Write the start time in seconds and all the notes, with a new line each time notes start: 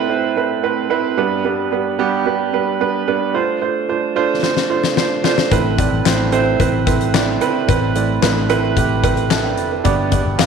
Already playing: A2 A3 C4 E4 A4 B4 D5
0.09 A3 C4 E4 C5
0.36 A3 C4 E4 B4
0.63 A3 C4 E4 B4
0.90 A3 C4 E4 B4
1.17 G2 G3 B3 D4 B4
1.44 G3 B3 D4 B4
1.72 G3 B3 D4 B4
1.99 G3 B3 D4 G4
2.26 G3 B3 D4 B4
2.53 G3 B3 D4 B4
2.80 G3 B3 D4 B4
3.07 G3 B3 D4 B4
3.34 A3 D4 F4 C5
3.61 A3 D4 F4 C5
3.89 A3 D4 F4 C5
4.16 A3 D4 F4 C5
4.42 A3 D4 F4 C5, snare
4.57 snare
4.69 A3 D4 F4 C5
4.83 snare
4.97 A3 D4 F4 C5, snare
5.23 A3 D4 F4 C5, snare
5.38 snare
5.51 A1 A2 A3 C4 E4 B4, kick, closed hi-hat
5.78 A3 C4 E4 D5, kick, closed hi-hat
5.93 A1
6.05 A1 A3 C4 E4 C5, snare, clap, closed hi-hat
6.32 A3 C4 E4 C5, closed hi-hat
6.59 A1 A3 C4 E4 B4, kick, closed hi-hat
6.86 A3 C4 E4 B4, kick, closed hi-hat
7.01 closed hi-hat
7.14 A3 C4 E4 D5, snare, clap, closed hi-hat
7.41 A3 C4 E4 B4, closed hi-hat
7.68 A1 A2 A3 C4 E4 B4, kick, closed hi-hat
7.95 A3 C4 E4 D5, closed hi-hat
8.22 A1 A3 C4 E4 B4, snare, clap, closed hi-hat
8.49 A3 C4 E4 B4, closed hi-hat
8.77 A1 A3 C4 E4 G4, kick, closed hi-hat
9.03 A3 C4 E4 B4, kick, closed hi-hat
9.17 closed hi-hat
9.30 E5 A5, snare, clap, closed hi-hat
9.44 D5 G5
9.58 F1, closed hi-hat
9.71 B4 E5
9.84 G1 G2 B3 D4 G4 D5, kick, closed hi-hat
10.12 B3 D4 G4 D5, kick, closed hi-hat
10.26 G1
10.38 G1 B3 D4 G4 F5, snare, clap, closed hi-hat